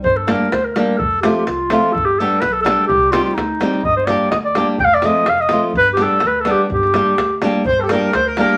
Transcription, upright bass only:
X:1
M:2/4
L:1/8
Q:1/4=126
K:Gm
V:1 name="Upright bass" clef=bass
G,,,2 D,,2 | F,,,2 C,,2 | G,,,2 =B,,,2 | C,,2 D,,2 |
G,,,2 D,,2 | F,,,2 F,,,2 | G,,,2 D,,2 | G,,,2 D,,2 |
G,,,2 D,,2 |]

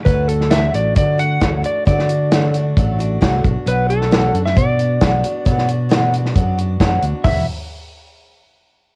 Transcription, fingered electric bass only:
X:1
M:4/4
L:1/16
Q:1/4=134
K:Bphr
V:1 name="Fingered electric bass" clef=bass
D,,6 A,,,2 D,4 D,,2 z2 | D,8 A,,,4 C,,2 B,,, z | B,,,6 F,,2 B,,4 B,,,2 z2 | B,,8 F,,4 F,,2 D,, z |
E,,,2 z12 z2 |]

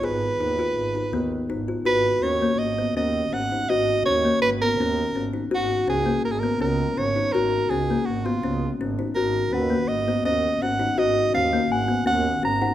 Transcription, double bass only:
X:1
M:5/4
L:1/8
Q:1/4=165
K:G#dor
V:1 name="Double bass" clef=bass
G,,,2 D,,2 G,,, z D,, z G,,,2 | G,,,2 D,,2 G,,,2 D,,2 G,,,2 | G,,,2 D,,2 G,,,2 D,,2 G,,,2 | G,,,2 C,,2 G,,,2 C,,2 G,,,2 |
G,,,2 C,,2 G,,,2 C,,2 G,,,2 | G,,,2 D,,2 G,,,2 D,,2 G,,,2 | G,,,2 D,,2 G,,,2 D,,2 G,,,2 |]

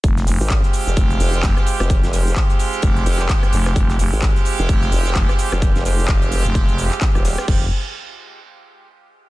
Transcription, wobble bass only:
X:1
M:4/4
L:1/16
Q:"Swing 16ths" 1/4=129
K:Fm
V:1 name="Wobble bass" clef=bass
z3 A,,,2 z2 F,,, z2 F,,,2 z3 F,,,- | F,,, F,,,3 z6 F,,,2 z4 | z3 A,,,2 z2 F,,, z2 F,,,2 z3 F,,,- | F,,, F,,,3 F,,,3 z6 E,,,2 z |
z16 |]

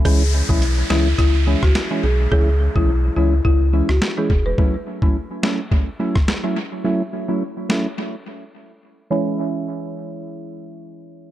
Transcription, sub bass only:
X:1
M:4/4
L:1/16
Q:"Swing 16ths" 1/4=106
K:C#m
V:1 name="Sub bass" clef=bass
C,,3 B,,,3 C,,2 C,,3 C,, z2 B,,,2 | C,,3 B,,,3 C,,2 C,,3 C,, z2 E,,,2 | z16 | z16 |
z16 |]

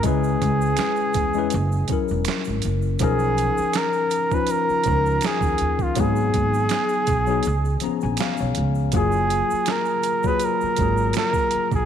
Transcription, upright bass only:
X:1
M:4/4
L:1/16
Q:"Swing 16ths" 1/4=81
K:F#
V:1 name="Upright bass" clef=bass
C,,2 C,,2 z2 =E,,2 F,,,2 z =E,,, z G,,, F,,,2 | B,,,3 z6 z C,,2 z D,, D,,2 | G,,,2 G,,,2 z2 B,,,2 C,,2 z A,,, z B,,, C,,2 | F,,,3 z6 z G,,,2 z3 A,,, |]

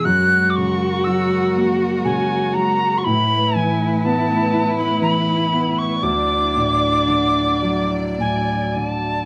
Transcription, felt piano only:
X:1
M:3/4
L:1/8
Q:1/4=60
K:Dlyd
V:1 name="Felt piano" clef=bass
F,, C, F, ^A, C, F, | A,, E, B, E E, B, | D,, A,, D, F, A,, D, |]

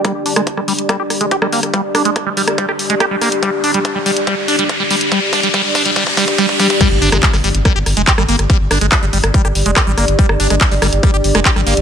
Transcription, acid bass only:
X:1
M:4/4
L:1/16
Q:1/4=142
K:Cm
V:1 name="Acid bass" clef=bass
G, z D A, z G, G, z G, G z A, G G, B, z | G, z D A, z G, G, z G, G z A, G G, B, z | G, z D G, z G, G, z G, z D G, z G, G, z | G, z D G, G, z D G, G, z G, z G, z G, z |
G, z D A, z G, G, z G, G z A, G G, B, z | G, z D A, z G, G, z G, G z A, G G, B, z | G, z D A, z G, G, z G, G z A, G G, B, z |]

